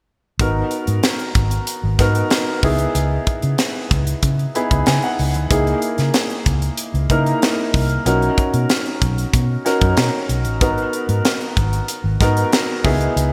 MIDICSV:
0, 0, Header, 1, 4, 480
1, 0, Start_track
1, 0, Key_signature, 5, "minor"
1, 0, Tempo, 638298
1, 298, Time_signature, 4, 2, 24, 8
1, 10022, End_track
2, 0, Start_track
2, 0, Title_t, "Grand piano"
2, 0, Program_c, 0, 0
2, 296, Note_on_c, 0, 59, 71
2, 300, Note_on_c, 0, 63, 67
2, 304, Note_on_c, 0, 66, 65
2, 306, Note_on_c, 0, 70, 81
2, 445, Control_c, 0, 64, 127
2, 1047, Note_off_c, 0, 59, 0
2, 1049, Note_off_c, 0, 63, 0
2, 1051, Note_off_c, 0, 66, 0
2, 1052, Note_off_c, 0, 70, 0
2, 1496, Note_on_c, 0, 59, 75
2, 1500, Note_on_c, 0, 63, 68
2, 1504, Note_on_c, 0, 66, 66
2, 1508, Note_on_c, 0, 70, 86
2, 1968, Note_off_c, 0, 59, 0
2, 1970, Note_off_c, 0, 63, 0
2, 1979, Note_on_c, 0, 59, 81
2, 1982, Note_off_c, 0, 66, 0
2, 1982, Note_on_c, 0, 63, 75
2, 1983, Note_off_c, 0, 70, 0
2, 1985, Note_on_c, 0, 64, 81
2, 1987, Note_on_c, 0, 68, 88
2, 1989, Control_c, 0, 64, 0
2, 2135, Control_c, 0, 64, 127
2, 2747, Note_off_c, 0, 59, 0
2, 2748, Note_off_c, 0, 63, 0
2, 2750, Note_off_c, 0, 64, 0
2, 2751, Note_off_c, 0, 68, 0
2, 3421, Note_on_c, 0, 59, 75
2, 3424, Note_on_c, 0, 83, 64
2, 3425, Note_on_c, 0, 63, 70
2, 3427, Note_on_c, 0, 64, 70
2, 3428, Note_on_c, 0, 68, 83
2, 3645, Note_off_c, 0, 83, 0
2, 3663, Note_on_c, 0, 80, 64
2, 3773, Note_off_c, 0, 80, 0
2, 3786, Note_on_c, 0, 78, 68
2, 3983, Note_off_c, 0, 59, 0
2, 3985, Note_off_c, 0, 63, 0
2, 3986, Note_off_c, 0, 64, 0
2, 3986, Note_off_c, 0, 68, 0
2, 4118, Note_off_c, 0, 78, 0
2, 4139, Note_on_c, 0, 58, 76
2, 4141, Note_on_c, 0, 63, 72
2, 4142, Note_on_c, 0, 64, 68
2, 4147, Note_on_c, 0, 68, 86
2, 4151, Control_c, 0, 64, 0
2, 4278, Control_c, 0, 64, 127
2, 4889, Note_off_c, 0, 58, 0
2, 4891, Note_off_c, 0, 63, 0
2, 4891, Note_off_c, 0, 64, 0
2, 4893, Note_off_c, 0, 68, 0
2, 5340, Note_on_c, 0, 58, 72
2, 5343, Note_on_c, 0, 63, 72
2, 5345, Note_on_c, 0, 64, 71
2, 5349, Note_on_c, 0, 70, 85
2, 5903, Note_off_c, 0, 58, 0
2, 5904, Note_off_c, 0, 63, 0
2, 5905, Note_off_c, 0, 64, 0
2, 5907, Note_off_c, 0, 70, 0
2, 6056, Note_on_c, 0, 61, 69
2, 6062, Note_on_c, 0, 63, 66
2, 6064, Note_on_c, 0, 66, 72
2, 6065, Note_on_c, 0, 70, 76
2, 6070, Control_c, 0, 64, 0
2, 6209, Control_c, 0, 64, 127
2, 6808, Note_off_c, 0, 61, 0
2, 6811, Note_off_c, 0, 63, 0
2, 6812, Note_off_c, 0, 66, 0
2, 6813, Note_off_c, 0, 70, 0
2, 7256, Note_on_c, 0, 61, 73
2, 7258, Note_on_c, 0, 63, 68
2, 7260, Note_on_c, 0, 66, 69
2, 7265, Note_on_c, 0, 70, 83
2, 7820, Note_off_c, 0, 61, 0
2, 7821, Note_off_c, 0, 63, 0
2, 7823, Note_off_c, 0, 66, 0
2, 7825, Note_off_c, 0, 70, 0
2, 7975, Note_on_c, 0, 59, 77
2, 7979, Note_on_c, 0, 63, 66
2, 7982, Note_on_c, 0, 66, 71
2, 7985, Note_on_c, 0, 70, 81
2, 7989, Control_c, 0, 64, 0
2, 8104, Control_c, 0, 64, 127
2, 8727, Note_off_c, 0, 59, 0
2, 8729, Note_off_c, 0, 63, 0
2, 8730, Note_off_c, 0, 66, 0
2, 8732, Note_off_c, 0, 70, 0
2, 9177, Note_on_c, 0, 59, 77
2, 9182, Note_on_c, 0, 63, 68
2, 9185, Note_on_c, 0, 66, 65
2, 9186, Note_on_c, 0, 70, 91
2, 9643, Note_off_c, 0, 59, 0
2, 9647, Note_off_c, 0, 63, 0
2, 9655, Note_on_c, 0, 59, 89
2, 9659, Note_on_c, 0, 63, 79
2, 9661, Note_off_c, 0, 66, 0
2, 9661, Note_on_c, 0, 64, 77
2, 9662, Note_off_c, 0, 70, 0
2, 9664, Note_on_c, 0, 68, 95
2, 9669, Control_c, 0, 64, 0
2, 9817, Control_c, 0, 64, 127
2, 10022, Note_off_c, 0, 59, 0
2, 10022, Note_off_c, 0, 63, 0
2, 10022, Note_off_c, 0, 64, 0
2, 10022, Note_off_c, 0, 68, 0
2, 10022, End_track
3, 0, Start_track
3, 0, Title_t, "Fingered electric bass"
3, 0, Program_c, 1, 33
3, 296, Note_on_c, 1, 32, 95
3, 464, Note_off_c, 1, 32, 0
3, 659, Note_on_c, 1, 44, 91
3, 742, Note_off_c, 1, 44, 0
3, 1018, Note_on_c, 1, 32, 86
3, 1185, Note_off_c, 1, 32, 0
3, 1380, Note_on_c, 1, 32, 95
3, 1463, Note_off_c, 1, 32, 0
3, 1498, Note_on_c, 1, 44, 88
3, 1665, Note_off_c, 1, 44, 0
3, 1979, Note_on_c, 1, 37, 90
3, 2146, Note_off_c, 1, 37, 0
3, 2217, Note_on_c, 1, 37, 96
3, 2385, Note_off_c, 1, 37, 0
3, 2582, Note_on_c, 1, 49, 89
3, 2664, Note_off_c, 1, 49, 0
3, 2941, Note_on_c, 1, 37, 81
3, 3107, Note_off_c, 1, 37, 0
3, 3179, Note_on_c, 1, 49, 104
3, 3346, Note_off_c, 1, 49, 0
3, 3545, Note_on_c, 1, 37, 77
3, 3626, Note_off_c, 1, 37, 0
3, 3668, Note_on_c, 1, 49, 86
3, 3748, Note_off_c, 1, 49, 0
3, 3906, Note_on_c, 1, 37, 85
3, 4027, Note_off_c, 1, 37, 0
3, 4027, Note_on_c, 1, 38, 72
3, 4108, Note_off_c, 1, 38, 0
3, 4141, Note_on_c, 1, 37, 91
3, 4308, Note_off_c, 1, 37, 0
3, 4501, Note_on_c, 1, 49, 91
3, 4584, Note_off_c, 1, 49, 0
3, 4860, Note_on_c, 1, 37, 93
3, 5027, Note_off_c, 1, 37, 0
3, 5219, Note_on_c, 1, 37, 103
3, 5303, Note_off_c, 1, 37, 0
3, 5339, Note_on_c, 1, 49, 93
3, 5506, Note_off_c, 1, 49, 0
3, 5820, Note_on_c, 1, 36, 80
3, 5987, Note_off_c, 1, 36, 0
3, 6058, Note_on_c, 1, 35, 91
3, 6226, Note_off_c, 1, 35, 0
3, 6420, Note_on_c, 1, 47, 91
3, 6504, Note_off_c, 1, 47, 0
3, 6782, Note_on_c, 1, 35, 93
3, 6948, Note_off_c, 1, 35, 0
3, 7022, Note_on_c, 1, 47, 92
3, 7188, Note_off_c, 1, 47, 0
3, 7381, Note_on_c, 1, 42, 77
3, 7465, Note_off_c, 1, 42, 0
3, 7499, Note_on_c, 1, 47, 84
3, 7583, Note_off_c, 1, 47, 0
3, 7738, Note_on_c, 1, 35, 81
3, 7862, Note_off_c, 1, 35, 0
3, 7862, Note_on_c, 1, 33, 71
3, 7981, Note_off_c, 1, 33, 0
3, 7981, Note_on_c, 1, 32, 99
3, 8148, Note_off_c, 1, 32, 0
3, 8338, Note_on_c, 1, 44, 93
3, 8422, Note_off_c, 1, 44, 0
3, 8702, Note_on_c, 1, 32, 87
3, 8868, Note_off_c, 1, 32, 0
3, 9053, Note_on_c, 1, 32, 90
3, 9139, Note_off_c, 1, 32, 0
3, 9179, Note_on_c, 1, 44, 96
3, 9346, Note_off_c, 1, 44, 0
3, 9659, Note_on_c, 1, 37, 88
3, 9826, Note_off_c, 1, 37, 0
3, 9899, Note_on_c, 1, 37, 97
3, 10022, Note_off_c, 1, 37, 0
3, 10022, End_track
4, 0, Start_track
4, 0, Title_t, "Drums"
4, 297, Note_on_c, 9, 36, 115
4, 297, Note_on_c, 9, 42, 84
4, 372, Note_off_c, 9, 36, 0
4, 372, Note_off_c, 9, 42, 0
4, 533, Note_on_c, 9, 42, 60
4, 608, Note_off_c, 9, 42, 0
4, 656, Note_on_c, 9, 42, 50
4, 731, Note_off_c, 9, 42, 0
4, 775, Note_on_c, 9, 42, 81
4, 779, Note_on_c, 9, 38, 104
4, 850, Note_off_c, 9, 42, 0
4, 854, Note_off_c, 9, 38, 0
4, 896, Note_on_c, 9, 42, 32
4, 971, Note_off_c, 9, 42, 0
4, 1014, Note_on_c, 9, 42, 72
4, 1017, Note_on_c, 9, 36, 93
4, 1089, Note_off_c, 9, 42, 0
4, 1092, Note_off_c, 9, 36, 0
4, 1136, Note_on_c, 9, 42, 58
4, 1211, Note_off_c, 9, 42, 0
4, 1256, Note_on_c, 9, 42, 108
4, 1331, Note_off_c, 9, 42, 0
4, 1496, Note_on_c, 9, 36, 89
4, 1497, Note_on_c, 9, 42, 66
4, 1498, Note_on_c, 9, 38, 31
4, 1571, Note_off_c, 9, 36, 0
4, 1572, Note_off_c, 9, 42, 0
4, 1573, Note_off_c, 9, 38, 0
4, 1617, Note_on_c, 9, 42, 52
4, 1692, Note_off_c, 9, 42, 0
4, 1733, Note_on_c, 9, 42, 79
4, 1738, Note_on_c, 9, 38, 105
4, 1808, Note_off_c, 9, 42, 0
4, 1813, Note_off_c, 9, 38, 0
4, 1978, Note_on_c, 9, 36, 99
4, 1978, Note_on_c, 9, 46, 73
4, 2053, Note_off_c, 9, 36, 0
4, 2053, Note_off_c, 9, 46, 0
4, 2093, Note_on_c, 9, 42, 46
4, 2168, Note_off_c, 9, 42, 0
4, 2219, Note_on_c, 9, 42, 83
4, 2294, Note_off_c, 9, 42, 0
4, 2457, Note_on_c, 9, 42, 63
4, 2459, Note_on_c, 9, 36, 89
4, 2532, Note_off_c, 9, 42, 0
4, 2534, Note_off_c, 9, 36, 0
4, 2575, Note_on_c, 9, 42, 50
4, 2650, Note_off_c, 9, 42, 0
4, 2694, Note_on_c, 9, 42, 83
4, 2698, Note_on_c, 9, 38, 97
4, 2770, Note_off_c, 9, 42, 0
4, 2773, Note_off_c, 9, 38, 0
4, 2940, Note_on_c, 9, 36, 90
4, 2940, Note_on_c, 9, 42, 72
4, 3015, Note_off_c, 9, 42, 0
4, 3016, Note_off_c, 9, 36, 0
4, 3060, Note_on_c, 9, 42, 60
4, 3135, Note_off_c, 9, 42, 0
4, 3178, Note_on_c, 9, 42, 104
4, 3180, Note_on_c, 9, 36, 87
4, 3253, Note_off_c, 9, 42, 0
4, 3255, Note_off_c, 9, 36, 0
4, 3304, Note_on_c, 9, 42, 37
4, 3379, Note_off_c, 9, 42, 0
4, 3424, Note_on_c, 9, 42, 72
4, 3499, Note_off_c, 9, 42, 0
4, 3541, Note_on_c, 9, 42, 50
4, 3542, Note_on_c, 9, 36, 84
4, 3616, Note_off_c, 9, 42, 0
4, 3617, Note_off_c, 9, 36, 0
4, 3655, Note_on_c, 9, 42, 79
4, 3661, Note_on_c, 9, 38, 102
4, 3730, Note_off_c, 9, 42, 0
4, 3736, Note_off_c, 9, 38, 0
4, 3777, Note_on_c, 9, 42, 31
4, 3852, Note_off_c, 9, 42, 0
4, 3903, Note_on_c, 9, 46, 70
4, 3978, Note_off_c, 9, 46, 0
4, 4017, Note_on_c, 9, 42, 45
4, 4092, Note_off_c, 9, 42, 0
4, 4140, Note_on_c, 9, 36, 106
4, 4142, Note_on_c, 9, 42, 98
4, 4216, Note_off_c, 9, 36, 0
4, 4217, Note_off_c, 9, 42, 0
4, 4264, Note_on_c, 9, 42, 33
4, 4339, Note_off_c, 9, 42, 0
4, 4376, Note_on_c, 9, 42, 66
4, 4452, Note_off_c, 9, 42, 0
4, 4496, Note_on_c, 9, 42, 47
4, 4501, Note_on_c, 9, 38, 33
4, 4571, Note_off_c, 9, 42, 0
4, 4576, Note_off_c, 9, 38, 0
4, 4615, Note_on_c, 9, 42, 81
4, 4619, Note_on_c, 9, 38, 98
4, 4691, Note_off_c, 9, 42, 0
4, 4694, Note_off_c, 9, 38, 0
4, 4737, Note_on_c, 9, 42, 32
4, 4812, Note_off_c, 9, 42, 0
4, 4857, Note_on_c, 9, 42, 75
4, 4859, Note_on_c, 9, 36, 85
4, 4932, Note_off_c, 9, 42, 0
4, 4934, Note_off_c, 9, 36, 0
4, 4978, Note_on_c, 9, 42, 57
4, 5053, Note_off_c, 9, 42, 0
4, 5095, Note_on_c, 9, 42, 107
4, 5170, Note_off_c, 9, 42, 0
4, 5224, Note_on_c, 9, 42, 33
4, 5300, Note_off_c, 9, 42, 0
4, 5338, Note_on_c, 9, 36, 85
4, 5340, Note_on_c, 9, 42, 68
4, 5413, Note_off_c, 9, 36, 0
4, 5415, Note_off_c, 9, 42, 0
4, 5463, Note_on_c, 9, 42, 49
4, 5538, Note_off_c, 9, 42, 0
4, 5582, Note_on_c, 9, 42, 81
4, 5587, Note_on_c, 9, 38, 104
4, 5657, Note_off_c, 9, 42, 0
4, 5663, Note_off_c, 9, 38, 0
4, 5821, Note_on_c, 9, 36, 80
4, 5827, Note_on_c, 9, 46, 72
4, 5896, Note_off_c, 9, 36, 0
4, 5902, Note_off_c, 9, 46, 0
4, 5937, Note_on_c, 9, 42, 43
4, 6012, Note_off_c, 9, 42, 0
4, 6062, Note_on_c, 9, 42, 89
4, 6138, Note_off_c, 9, 42, 0
4, 6184, Note_on_c, 9, 42, 32
4, 6259, Note_off_c, 9, 42, 0
4, 6299, Note_on_c, 9, 42, 64
4, 6300, Note_on_c, 9, 36, 80
4, 6374, Note_off_c, 9, 42, 0
4, 6375, Note_off_c, 9, 36, 0
4, 6419, Note_on_c, 9, 42, 53
4, 6494, Note_off_c, 9, 42, 0
4, 6539, Note_on_c, 9, 42, 77
4, 6542, Note_on_c, 9, 38, 103
4, 6614, Note_off_c, 9, 42, 0
4, 6618, Note_off_c, 9, 38, 0
4, 6659, Note_on_c, 9, 42, 29
4, 6734, Note_off_c, 9, 42, 0
4, 6780, Note_on_c, 9, 42, 70
4, 6781, Note_on_c, 9, 36, 87
4, 6855, Note_off_c, 9, 42, 0
4, 6856, Note_off_c, 9, 36, 0
4, 6904, Note_on_c, 9, 42, 56
4, 6980, Note_off_c, 9, 42, 0
4, 7020, Note_on_c, 9, 36, 88
4, 7020, Note_on_c, 9, 42, 102
4, 7095, Note_off_c, 9, 36, 0
4, 7095, Note_off_c, 9, 42, 0
4, 7263, Note_on_c, 9, 42, 65
4, 7264, Note_on_c, 9, 38, 28
4, 7338, Note_off_c, 9, 42, 0
4, 7339, Note_off_c, 9, 38, 0
4, 7378, Note_on_c, 9, 42, 53
4, 7381, Note_on_c, 9, 36, 83
4, 7453, Note_off_c, 9, 42, 0
4, 7456, Note_off_c, 9, 36, 0
4, 7496, Note_on_c, 9, 42, 80
4, 7501, Note_on_c, 9, 38, 105
4, 7571, Note_off_c, 9, 42, 0
4, 7577, Note_off_c, 9, 38, 0
4, 7741, Note_on_c, 9, 42, 73
4, 7816, Note_off_c, 9, 42, 0
4, 7856, Note_on_c, 9, 42, 46
4, 7931, Note_off_c, 9, 42, 0
4, 7980, Note_on_c, 9, 36, 109
4, 7982, Note_on_c, 9, 42, 88
4, 8055, Note_off_c, 9, 36, 0
4, 8057, Note_off_c, 9, 42, 0
4, 8105, Note_on_c, 9, 42, 33
4, 8180, Note_off_c, 9, 42, 0
4, 8220, Note_on_c, 9, 42, 61
4, 8295, Note_off_c, 9, 42, 0
4, 8338, Note_on_c, 9, 42, 50
4, 8414, Note_off_c, 9, 42, 0
4, 8458, Note_on_c, 9, 42, 85
4, 8462, Note_on_c, 9, 38, 103
4, 8534, Note_off_c, 9, 42, 0
4, 8537, Note_off_c, 9, 38, 0
4, 8579, Note_on_c, 9, 42, 32
4, 8654, Note_off_c, 9, 42, 0
4, 8700, Note_on_c, 9, 36, 85
4, 8701, Note_on_c, 9, 42, 66
4, 8775, Note_off_c, 9, 36, 0
4, 8776, Note_off_c, 9, 42, 0
4, 8820, Note_on_c, 9, 42, 57
4, 8895, Note_off_c, 9, 42, 0
4, 8937, Note_on_c, 9, 42, 110
4, 9012, Note_off_c, 9, 42, 0
4, 9179, Note_on_c, 9, 36, 86
4, 9185, Note_on_c, 9, 42, 71
4, 9186, Note_on_c, 9, 38, 28
4, 9254, Note_off_c, 9, 36, 0
4, 9260, Note_off_c, 9, 42, 0
4, 9261, Note_off_c, 9, 38, 0
4, 9300, Note_on_c, 9, 42, 52
4, 9376, Note_off_c, 9, 42, 0
4, 9419, Note_on_c, 9, 42, 80
4, 9424, Note_on_c, 9, 38, 109
4, 9494, Note_off_c, 9, 42, 0
4, 9500, Note_off_c, 9, 38, 0
4, 9660, Note_on_c, 9, 36, 93
4, 9664, Note_on_c, 9, 46, 70
4, 9735, Note_off_c, 9, 36, 0
4, 9739, Note_off_c, 9, 46, 0
4, 9780, Note_on_c, 9, 42, 46
4, 9856, Note_off_c, 9, 42, 0
4, 9904, Note_on_c, 9, 42, 93
4, 9980, Note_off_c, 9, 42, 0
4, 10022, End_track
0, 0, End_of_file